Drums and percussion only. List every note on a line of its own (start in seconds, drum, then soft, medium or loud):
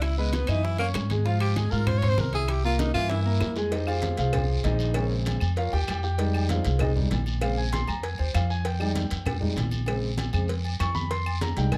0.02 high bongo medium
0.02 high conga soft
0.02 high timbale medium
0.02 long guiro medium
0.02 claves medium
0.18 high bongo soft
0.18 high conga soft
0.33 high bongo medium
0.33 high conga medium
0.33 high timbale medium
0.33 low timbale medium
0.33 short guiro medium
0.47 high bongo soft
0.47 high timbale loud
0.47 short guiro medium
0.47 claves medium
0.63 high bongo medium
0.63 high conga soft
0.63 long guiro medium
0.78 high conga soft
0.78 high timbale medium
0.94 high bongo medium
0.94 low bongo medium
0.94 high conga soft
0.94 high timbale medium
0.94 low timbale medium
0.94 short guiro medium
0.94 claves medium
1.10 high bongo soft
1.10 high conga medium
1.10 high timbale medium
1.10 short guiro medium
1.25 high bongo medium
1.25 high conga soft
1.25 long guiro medium
1.40 high bongo soft
1.40 high conga soft
1.40 high timbale loud
1.40 claves medium
1.56 high bongo medium
1.56 high conga medium
1.56 high timbale medium
1.56 low timbale medium
1.56 short guiro medium
1.71 high conga soft
1.71 short guiro medium
1.87 high bongo medium
1.87 high conga soft
1.87 low conga medium
1.87 high timbale medium
1.87 long guiro medium
1.87 claves medium
2.02 high bongo soft
2.02 high conga soft
2.02 low conga medium
2.02 high timbale medium
2.18 high bongo medium
2.18 low bongo medium
2.18 high conga medium
2.18 low timbale medium
2.18 short guiro medium
2.33 high bongo soft
2.33 high conga medium
2.33 high timbale medium
2.33 short guiro medium
2.48 high bongo medium
2.48 high conga soft
2.48 high timbale medium
2.48 long guiro medium
2.48 claves medium
2.64 high bongo soft
2.64 high conga soft
2.79 high bongo medium
2.79 high conga loud
2.79 high timbale loud
2.79 short guiro medium
2.94 high bongo soft
2.94 high timbale medium
2.94 short guiro medium
2.94 claves medium
3.09 high bongo medium
3.09 high conga soft
3.09 high timbale loud
3.09 long guiro medium
3.26 high conga soft
3.40 high bongo medium
3.40 low bongo medium
3.40 low timbale loud
3.40 short guiro medium
3.40 claves medium
3.56 high bongo soft
3.56 low timbale loud
3.56 short guiro medium
3.72 cowbell loud
3.72 high conga soft
3.72 low agogo medium
3.72 long guiro medium
3.87 high conga soft
3.87 low agogo loud
3.87 claves medium
4.02 cowbell medium
4.02 high conga loud
4.02 low timbale medium
4.02 short guiro medium
4.17 cowbell medium
4.17 high conga soft
4.17 short guiro medium
4.33 cowbell loud
4.33 high conga soft
4.33 low conga medium
4.33 low agogo loud
4.33 long guiro medium
4.33 claves medium
4.50 high conga soft
4.63 cowbell medium
4.63 high conga medium
4.63 low timbale medium
4.63 low agogo medium
4.63 short guiro medium
4.79 low agogo medium
4.79 short guiro medium
4.94 cowbell loud
4.94 high conga soft
4.94 low agogo loud
4.94 long guiro medium
4.94 claves medium
5.11 high conga soft
5.25 cowbell medium
5.25 high conga loud
5.25 low timbale medium
5.25 low agogo medium
5.25 short guiro medium
5.40 high conga soft
5.40 low agogo loud
5.40 short guiro medium
5.40 claves medium
5.56 cowbell loud
5.56 high conga soft
5.56 long guiro medium
5.73 high conga soft
5.73 low agogo loud
5.87 cowbell medium
5.87 high conga soft
5.87 low timbale medium
5.87 low agogo loud
5.87 short guiro medium
5.87 claves medium
6.03 short guiro medium
6.18 cowbell loud
6.18 high conga soft
6.18 low agogo medium
6.18 long guiro medium
6.34 high conga soft
6.34 low agogo loud
6.34 claves medium
6.49 cowbell medium
6.49 high conga medium
6.49 low timbale medium
6.49 short guiro medium
6.64 cowbell medium
6.64 short guiro medium
6.79 cowbell loud
6.79 high conga soft
6.79 low conga medium
6.79 low agogo loud
6.79 long guiro medium
6.79 claves medium
6.97 high conga soft
6.97 low conga medium
7.11 cowbell medium
7.11 high conga medium
7.11 low timbale medium
7.11 low agogo medium
7.11 short guiro medium
7.26 low agogo medium
7.26 short guiro medium
7.41 cowbell loud
7.41 high conga soft
7.41 low agogo loud
7.41 long guiro medium
7.41 claves medium
7.59 high conga soft
7.72 cowbell medium
7.72 high conga medium
7.72 low timbale medium
7.72 low agogo medium
7.72 short guiro medium
7.88 high conga soft
7.88 low agogo loud
7.88 short guiro medium
7.88 claves medium
8.03 cowbell loud
8.03 high conga soft
8.03 long guiro medium
8.18 high conga soft
8.18 low agogo medium
8.34 cowbell medium
8.34 high conga soft
8.34 low timbale medium
8.34 low agogo loud
8.34 short guiro medium
8.34 claves medium
8.50 short guiro medium
8.65 cowbell loud
8.65 high conga soft
8.65 low agogo medium
8.65 long guiro medium
8.80 high conga soft
8.80 low agogo loud
8.80 claves medium
8.95 cowbell medium
8.95 high conga medium
8.95 low timbale medium
8.95 short guiro medium
9.10 cowbell medium
9.10 high conga soft
9.10 short guiro medium
9.25 cowbell loud
9.25 high conga soft
9.25 low conga medium
9.25 low agogo loud
9.25 long guiro medium
9.25 claves medium
9.42 high conga soft
9.42 low conga medium
9.56 cowbell medium
9.56 high conga medium
9.56 low timbale medium
9.56 low agogo medium
9.56 short guiro medium
9.71 high conga medium
9.71 low agogo medium
9.71 short guiro medium
9.86 cowbell loud
9.86 high conga soft
9.86 low agogo loud
9.86 long guiro medium
9.86 claves medium
10.02 high conga soft
10.18 cowbell medium
10.18 high conga medium
10.18 low timbale medium
10.18 low agogo medium
10.18 short guiro medium
10.33 high conga soft
10.33 low agogo loud
10.33 short guiro medium
10.33 claves medium
10.48 cowbell loud
10.48 high conga soft
10.48 long guiro medium
10.65 high conga soft
10.65 low agogo medium
10.79 cowbell medium
10.79 high conga soft
10.79 low timbale medium
10.79 low agogo loud
10.79 short guiro medium
10.79 claves medium
10.95 high conga medium
10.95 short guiro medium
11.11 cowbell loud
11.11 high conga soft
11.11 low agogo medium
11.11 long guiro medium
11.26 high conga soft
11.26 low agogo loud
11.26 claves medium
11.41 cowbell medium
11.41 high conga loud
11.41 low timbale medium
11.41 short guiro medium
11.57 cowbell medium
11.57 short guiro medium
11.72 cowbell loud
11.72 high conga soft
11.72 low conga medium
11.72 low agogo loud
11.72 long guiro medium
11.72 claves medium